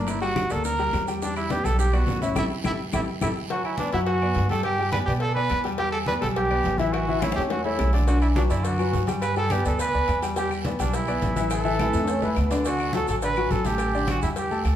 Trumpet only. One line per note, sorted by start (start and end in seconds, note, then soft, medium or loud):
0.00 0.11 D4 medium
0.09 0.21 E4 medium
0.22 0.53 F#4 loud
0.52 0.65 A4 loud
0.65 1.05 A#4 loud
1.23 1.36 D4 medium
1.37 1.53 E4 loud
1.51 1.66 G4 loud
1.65 1.79 A4 loud
1.79 1.96 G4 loud
1.94 2.22 F#4 loud
2.23 2.36 E4 medium
2.38 2.44 E4 loud
2.66 2.72 E4 loud
2.94 3.01 E4 medium
3.23 3.29 E4 medium
3.51 3.64 F#4 medium
3.65 3.78 E4 medium
3.79 3.92 D4 medium
3.93 4.00 E4 loud
4.06 4.47 F#4 loud
4.50 4.63 A4 loud
4.64 4.91 G4 loud
4.92 4.99 B4 loud
5.06 5.13 G4 medium
5.21 5.34 A4 loud
5.35 5.62 B4 loud
5.79 5.92 G4 loud
5.92 5.99 A4 loud
6.07 6.14 B4 loud
6.21 6.28 A4 loud
6.37 6.80 G4 loud
6.78 6.94 E4 medium
6.93 7.23 F#4 loud
7.22 7.35 E4 loud
7.36 7.43 G4 medium
7.51 7.64 F#4 loud
7.65 7.92 E4 medium
8.07 8.21 F#4 medium
8.22 8.28 E4 medium
8.36 8.43 D4 medium
8.50 8.66 E4 medium
8.64 9.08 F#4 medium
9.22 9.35 B4 loud
9.38 9.53 A4 loud
9.52 9.66 G4 loud
9.67 9.79 A4 medium
9.81 10.20 B4 loud
10.38 10.51 G4 medium
10.81 10.97 D4 medium
10.95 11.52 E4 loud
11.53 12.34 A4 loud
12.67 12.93 F#4 loud
12.96 13.08 A4 loud
13.10 13.16 A4 medium
13.24 13.53 B4 loud
13.52 13.68 A4 medium
13.66 14.09 G4 loud
14.10 14.22 F#4 medium
14.23 14.29 E4 medium
14.38 14.64 G4 medium